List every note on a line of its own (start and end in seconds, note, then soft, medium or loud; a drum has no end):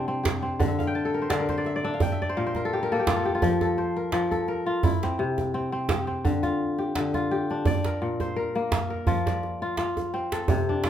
0.00 0.65 C3 medium
0.00 1.41 D4 medium
0.00 0.76 E4 medium
0.00 0.10 A#4 medium
0.08 0.42 C4 medium
0.23 1.65 G4 medium
0.23 djembe slap medium
0.23 djembe tone medium
0.42 2.22 C4 medium
0.59 1.29 D3 medium
0.59 djembe bass medium
0.68 1.66 E5 medium
0.79 1.72 F5 medium
0.79 djembe tone soft
0.87 1.81 G5 medium
0.95 1.20 A5 medium
0.95 djembe slap soft
1.05 1.46 A4 medium
1.14 1.39 A#4 medium
1.22 1.49 C5 medium
1.30 2.06 D3 medium
1.30 1.57 D5 medium
1.30 djembe slap medium
1.40 2.36 A#4 medium
1.49 2.29 C5 medium
1.49 djembe slap soft
1.49 djembe tone soft
1.58 1.75 D5 medium
1.65 1.84 E5 medium
1.65 djembe slap soft
1.76 2.21 D5 medium
1.84 3.52 D4 medium
1.84 2.12 E5 medium
1.94 2.18 F5 medium
2.00 2.95 G5 medium
2.00 djembe tone medium
2.00 djembe bass medium
2.12 3.13 E5 medium
2.22 3.33 D5 medium
2.29 2.46 C5 medium
2.37 3.47 A#2 medium
2.37 2.56 A#4 medium
2.46 3.65 C5 medium
2.55 2.82 A#4 medium
2.55 djembe tone soft
2.65 2.89 A4 medium
2.73 2.99 G4 medium
2.83 3.22 A#4 medium
2.92 3.67 A#3 medium
2.92 3.16 A4 medium
2.99 3.25 G4 medium
3.07 3.34 F4 medium
3.07 djembe slap medium
3.07 djembe tone medium
3.16 3.61 A4 medium
3.25 4.66 G4 medium
3.35 4.66 F4 medium
3.42 4.12 F3 medium
3.42 djembe bass medium
3.61 4.31 A4 medium
3.61 djembe tone soft
3.77 4.97 C5 medium
3.77 djembe slap soft
3.97 4.48 A#4 medium
4.12 4.89 F3 medium
4.12 djembe slap medium
4.31 5.63 A4 medium
4.31 djembe slap soft
4.31 djembe tone soft
4.48 5.76 A#4 medium
4.48 djembe slap soft
4.66 4.90 F4 medium
4.83 6.41 E4 medium
4.83 djembe tone medium
4.83 djembe bass medium
5.03 5.54 C4 medium
5.03 djembe slap soft
5.19 6.30 C3 medium
5.38 djembe tone medium
5.54 5.72 C4 medium
5.72 6.07 C4 medium
5.89 6.78 G4 medium
5.89 djembe slap medium
5.89 djembe tone medium
6.07 7.87 C4 medium
6.25 6.94 D3 medium
6.25 djembe slap soft
6.25 djembe bass medium
6.43 7.14 F4 medium
6.43 djembe slap soft
6.43 djembe tone medium
6.78 7.31 G4 medium
6.78 djembe slap soft
6.95 7.71 D3 medium
6.95 djembe slap medium
7.14 8.66 F4 medium
7.14 djembe slap soft
7.14 djembe tone soft
7.31 8.73 G4 medium
7.50 9.18 D4 medium
7.50 djembe slap soft
7.66 8.78 D5 medium
7.66 djembe tone medium
7.66 djembe bass medium
7.84 8.36 A#4 medium
7.84 djembe slap soft
8.02 9.13 A#2 medium
8.20 9.39 C5 medium
8.20 djembe slap soft
8.20 djembe tone medium
8.36 8.90 A#4 medium
8.55 10.39 A#3 medium
8.55 djembe slap soft
8.72 9.72 F5 medium
8.72 djembe slap medium
8.72 djembe tone medium
8.90 10.17 A#4 medium
9.07 10.54 F3 medium
9.07 9.62 F4 medium
9.07 djembe slap soft
9.07 djembe bass medium
9.26 10.37 D5 medium
9.26 djembe slap medium
9.26 djembe tone soft
9.43 djembe slap soft
9.62 9.78 F4 medium
9.77 10.85 F4 medium
9.77 djembe slap medium
9.97 djembe tone soft
10.14 10.90 C4 medium
10.32 10.90 A4 medium
10.32 djembe slap medium
10.48 10.90 C3 medium
10.48 djembe slap soft
10.48 djembe tone medium
10.48 djembe bass medium
10.69 10.90 D4 medium
10.84 10.90 F4 medium
10.84 djembe slap medium